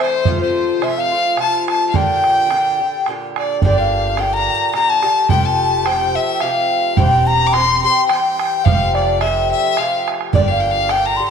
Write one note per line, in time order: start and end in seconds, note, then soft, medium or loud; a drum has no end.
0.00 0.24 C3 soft
0.00 0.26 E3 soft
0.00 0.26 A3 medium
0.00 0.27 E4 medium
0.00 0.40 C5 medium
0.00 0.38 C5 medium
0.00 bodhran medium
0.25 0.80 C3 medium
0.25 0.81 F3 medium
0.25 0.82 A3 medium
0.25 0.83 F4 loud
0.25 bodhran medium
0.41 0.85 C5 medium
0.81 1.11 C3 medium
0.81 1.12 F3 soft
0.81 1.13 A3 medium
0.81 1.10 F4 medium
0.81 0.97 E5 medium
0.81 1.01 E5 medium
0.81 bodhran medium
0.97 1.41 F5 medium
0.97 1.39 F5 medium
1.11 1.37 F3 soft
1.11 1.38 A3 soft
1.11 1.37 F4 soft
1.37 1.93 C3 medium
1.37 1.94 F3 soft
1.37 1.94 A3 medium
1.37 1.95 F4 soft
1.37 1.66 A5 medium
1.37 1.68 A5 medium
1.37 bodhran medium
1.68 1.86 A5 medium
1.68 1.98 A5 medium
1.68 bodhran medium
1.89 1.97 F5 medium
1.94 2.48 A#2 medium
1.94 2.50 D3 medium
1.94 2.52 D4 medium
1.94 2.52 G4 medium
1.94 3.07 G5 medium
1.94 3.07 G5 loud
1.94 bodhran medium
2.24 bodhran soft
2.50 2.79 A#2 medium
2.50 2.80 D3 medium
2.50 2.80 D4 medium
2.50 2.78 G4 medium
2.50 bodhran medium
2.79 3.07 D3 soft
2.79 3.06 D4 soft
2.79 3.05 G4 medium
3.06 3.61 A#2 soft
3.06 3.62 D3 medium
3.06 3.63 D4 medium
3.06 3.65 G4 medium
3.06 bodhran medium
3.36 3.61 D5 medium
3.36 bodhran medium
3.62 4.47 G1 medium
3.62 4.16 A#2 medium
3.62 4.17 D3 medium
3.62 4.18 D4 medium
3.62 4.20 G4 loud
3.62 3.79 D5 medium
3.62 3.77 D5 loud
3.62 bodhran medium
3.78 4.20 F5 medium
3.78 4.22 F5 medium
4.17 4.72 A#2 soft
4.17 4.73 D3 medium
4.17 4.74 D4 medium
4.17 4.76 G4 medium
4.17 4.33 G5 medium
4.17 4.35 G5 medium
4.17 bodhran medium
4.34 4.74 A#5 medium
4.34 4.71 A#5 medium
4.73 5.03 A#2 soft
4.73 5.04 D3 medium
4.73 5.03 D4 soft
4.73 5.02 G4 medium
4.73 4.91 A#5 medium
4.73 4.90 A#5 medium
4.73 bodhran medium
4.89 5.32 A5 medium
4.89 5.29 A5 medium
5.03 5.30 D3 soft
5.03 5.30 D4 soft
5.03 5.29 G4 soft
5.03 bodhran medium
5.29 6.15 F1 medium
5.29 5.84 C3 medium
5.29 5.85 F3 medium
5.29 5.86 A3 medium
5.29 5.88 G4 medium
5.29 5.47 G5 medium
5.29 5.45 G5 loud
5.29 bodhran medium
5.45 5.88 A5 medium
5.45 5.84 A5 medium
5.84 6.39 C3 medium
5.84 6.41 F3 medium
5.84 6.41 A3 medium
5.84 6.43 G4 medium
5.84 6.17 G5 loud
5.84 6.17 G5 medium
5.84 bodhran medium
6.15 6.43 E5 medium
6.15 6.42 E5 medium
6.40 6.97 C3 soft
6.40 6.97 F3 soft
6.40 6.98 A3 medium
6.40 6.99 G4 soft
6.40 6.96 F5 medium
6.40 6.99 F5 medium
6.40 bodhran medium
6.97 7.82 E1 medium
6.97 7.52 G2 medium
6.97 7.53 E3 medium
6.97 7.55 C4 medium
6.97 7.55 G4 medium
6.97 7.29 G5 loud
6.97 7.26 G5 medium
6.97 bodhran medium
7.26 7.48 A#5 medium
7.26 7.54 A#5 loud
7.46 7.54 D6 medium
7.53 7.83 G2 medium
7.53 7.84 E3 soft
7.53 7.84 C4 medium
7.53 7.83 G4 medium
7.53 7.83 C6 loud
7.53 7.83 C6 medium
7.53 bodhran medium
7.84 8.09 E3 soft
7.84 8.10 C4 soft
7.84 8.10 G4 soft
7.84 8.08 C6 medium
7.84 8.07 C6 medium
8.07 8.65 G2 soft
8.07 8.65 E3 medium
8.07 8.65 C4 soft
8.07 8.36 G5 loud
8.07 8.66 G5 medium
8.07 bodhran medium
8.12 8.67 G4 medium
8.39 8.66 G5 loud
8.39 bodhran medium
8.64 9.51 F1 medium
8.64 9.19 C3 medium
8.64 9.21 F3 medium
8.64 9.22 A3 medium
8.64 9.24 G4 medium
8.64 8.96 F5 loud
8.64 8.94 F5 medium
8.64 bodhran medium
8.95 9.20 D5 loud
8.95 9.23 D5 medium
8.95 bodhran medium
9.21 9.76 C3 medium
9.21 9.77 F3 soft
9.21 9.78 A3 medium
9.21 9.80 G4 medium
9.21 9.49 E5 medium
9.21 9.51 E5 medium
9.21 bodhran medium
9.51 9.79 E5 medium
9.51 9.80 E5 medium
9.77 10.33 C3 soft
9.77 10.34 F3 medium
9.77 10.34 A3 soft
9.77 10.34 G4 soft
9.77 10.07 F5 medium
9.77 10.08 F5 medium
9.77 bodhran medium
10.08 bodhran medium
10.21 bodhran soft
10.33 11.18 G1 medium
10.33 10.88 A#2 medium
10.33 10.90 D3 medium
10.33 10.90 D4 medium
10.33 10.90 G4 loud
10.33 10.49 D5 medium
10.33 10.41 D5 loud
10.33 bodhran medium
10.48 10.62 F5 medium
10.48 10.93 F5 loud
10.60 10.72 G5 medium
10.71 10.91 F5 medium
10.89 11.19 A#2 medium
10.89 11.20 D3 medium
10.89 11.20 D4 medium
10.89 11.18 G4 medium
10.89 11.07 G5 medium
10.89 11.09 G5 loud
10.89 bodhran medium
11.05 11.26 A#5 medium
11.05 11.18 A#5 medium
11.17 11.30 G4 soft
11.17 11.30 C6 medium
11.21 11.30 D3 soft
11.21 11.30 D4 soft